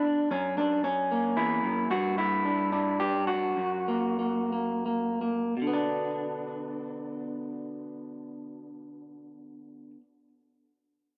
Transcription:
0.00 0.27 B2 medium
0.00 0.30 D3 medium
0.00 0.31 D4 medium
0.31 1.37 F#2 medium
0.31 0.57 C#4 medium
0.58 0.84 D4 medium
0.84 1.90 C#4 medium
1.11 1.87 A#3 soft
1.37 1.63 E2 medium
1.37 1.90 E4 medium
1.63 1.90 F#2 medium
1.90 3.53 G2 medium
1.90 2.17 F#4 loud
2.18 2.99 E4 medium
2.45 2.71 D4 soft
2.72 3.57 D4 medium
3.00 3.27 G4 medium
3.27 5.58 F#4 medium
3.57 5.54 F#2 soft
3.88 4.18 A#3 soft
4.19 4.51 A#3 soft
4.52 4.85 A#3 soft
4.86 5.20 A#3 soft
5.21 5.54 A#3 soft
5.57 9.90 B2 soft
5.62 9.95 D3 soft
5.67 10.00 B3 soft
5.73 10.03 D4 medium

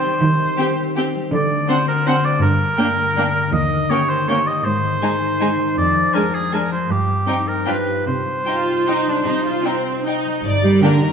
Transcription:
0.00 0.21 D#3 soft
0.00 0.39 C4 soft
0.00 1.34 D#4 soft
0.00 0.57 G4 soft
0.00 0.77 C5 soft
0.00 1.15 C5 medium
0.05 1.14 G3 soft
0.22 1.34 D#3 soft
0.22 0.51 D#3 medium
0.40 2.43 C4 soft
0.58 0.67 C4 soft
0.58 0.66 G4 soft
0.58 0.96 G4 soft
0.58 0.67 G5 soft
0.96 1.05 C4 soft
0.96 1.04 G4 soft
0.96 1.34 G4 soft
0.96 1.05 G5 soft
1.15 1.34 G3 soft
1.32 2.43 D3 soft
1.32 1.61 D3 medium
1.32 1.66 D5 medium
1.50 2.23 A3 soft
1.68 1.77 C4 soft
1.68 1.76 D4 soft
1.68 2.05 F#4 soft
1.68 1.87 C5 medium
1.68 1.77 F#5 soft
1.87 2.08 A#4 medium
1.87 2.43 C5 soft
2.06 2.15 C4 soft
2.06 2.15 D4 soft
2.06 2.43 F#4 soft
2.06 2.27 C5 medium
2.06 2.14 F#5 soft
2.24 2.43 A3 soft
2.24 2.42 D5 medium
2.42 3.54 G2 soft
2.42 2.71 G2 medium
2.42 3.51 A#4 medium
2.59 3.34 D3 soft
2.77 2.86 A#3 soft
2.77 3.16 D4 soft
2.77 2.87 D4 soft
2.77 2.85 G5 soft
2.98 4.67 A#4 soft
3.17 3.26 A#3 soft
3.17 3.54 D4 soft
3.17 3.25 D4 soft
3.17 3.25 G5 soft
3.35 3.54 D3 soft
3.53 3.82 D#2 medium
3.53 4.66 D#3 soft
3.53 3.91 D#5 medium
3.70 4.46 A#3 soft
3.89 3.98 A#3 soft
3.89 3.98 C#4 soft
3.89 4.27 G4 soft
3.89 4.11 C#5 medium
3.89 3.98 G5 soft
4.09 4.30 C5 medium
4.09 4.66 C#5 soft
4.28 4.37 A#3 soft
4.28 4.37 C#4 soft
4.28 4.66 G4 soft
4.28 4.49 C#5 medium
4.28 4.36 G5 soft
4.47 4.66 A#3 soft
4.47 4.67 D#5 medium
4.65 5.78 G#2 soft
4.65 4.94 G#2 medium
4.65 5.77 C5 medium
4.83 5.58 D#3 soft
5.02 5.11 G#3 soft
5.02 5.39 D#4 soft
5.02 5.11 D#4 soft
5.02 5.10 G#5 soft
5.21 6.33 G#4 soft
5.40 5.49 G#3 soft
5.40 5.78 D#4 soft
5.40 5.49 D#4 soft
5.40 5.48 G#5 soft
5.59 5.78 D#3 soft
5.77 6.91 F2 soft
5.77 6.06 F2 medium
5.77 6.16 D5 medium
5.95 6.70 F3 soft
6.14 6.23 G#3 soft
6.14 6.52 D4 soft
6.14 6.22 D4 soft
6.14 6.35 A#4 medium
6.14 6.22 G#5 soft
6.34 6.91 G#4 soft
6.34 6.55 G#4 medium
6.53 6.61 G#3 soft
6.53 6.91 D4 soft
6.53 6.62 D4 soft
6.53 6.71 A#4 medium
6.53 6.61 G#5 soft
6.71 6.91 F3 soft
6.71 6.92 C5 medium
6.89 7.66 G2 soft
6.89 7.19 G2 medium
6.89 7.49 G4 medium
7.07 8.24 G3 soft
7.26 7.35 C4 soft
7.26 7.69 D#4 soft
7.26 7.36 D#4 soft
7.26 7.34 G5 soft
7.47 7.70 A#4 medium
7.47 7.69 C5 soft
7.66 7.98 G2 soft
7.66 8.08 G2 soft
7.66 7.75 D4 soft
7.66 7.75 F4 soft
7.66 8.06 B4 soft
7.66 7.74 G5 soft
7.87 8.08 F4 soft
7.87 11.13 G4 soft
8.06 9.25 C3 soft
8.06 8.38 C3 soft
8.06 10.03 C5 medium
8.25 9.06 G3 soft
8.46 8.86 D#4 soft
8.46 8.55 D#4 soft
8.46 8.85 F4 medium
8.46 8.54 G5 soft
8.88 9.64 D#4 soft
8.88 9.08 D#4 soft
8.88 8.97 D#4 soft
8.88 8.96 G5 soft
9.07 10.25 G3 soft
9.07 9.26 D4 soft
9.26 10.46 C3 soft
9.26 9.57 C3 soft
9.26 9.45 D#4 soft
9.45 10.46 C4 soft
9.45 9.65 F4 soft
9.65 10.07 C4 soft
9.65 10.05 D#4 soft
9.65 9.74 D#4 soft
9.65 9.73 G5 soft
9.86 10.46 C5 soft
10.06 10.46 D#4 soft
10.06 10.44 D#4 soft
10.06 10.15 D#4 soft
10.06 10.14 G5 soft
10.26 11.13 G3 soft
10.44 10.75 G1 medium
10.44 11.13 G2 soft
10.44 10.81 D5 soft
10.63 10.82 G3 soft
10.63 11.13 A#3 soft
10.63 10.83 G4 medium
10.81 11.03 D3 soft
10.81 10.91 A#3 soft
10.81 11.03 D4 medium
10.81 11.13 D4 soft
10.81 10.91 D4 soft
10.81 11.13 A#4 soft
10.81 10.91 D5 soft
10.81 10.91 G5 soft
11.02 11.13 D#3 soft
11.02 11.13 D#4 medium

